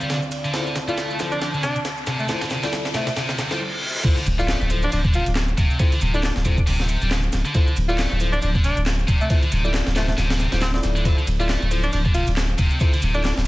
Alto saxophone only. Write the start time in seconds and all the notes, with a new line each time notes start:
0.88 F4
1.31 D4
1.41 D4
1.63 D4
2.19 A3
2.29 A3
2.95 A3
3.07 A3
4.39 F4
4.84 D4
4.93 D4
5.15 F4
6.14 D4
6.24 D4
7.88 F4
8.32 D4
8.42 D4
8.64 D4
9.21 A3
9.30 A3
9.96 A3
10.08 A3
10.62 C4
10.74 C4
11.40 F4
11.83 D4
11.92 D4
12.14 F4
13.14 D4
13.24 D4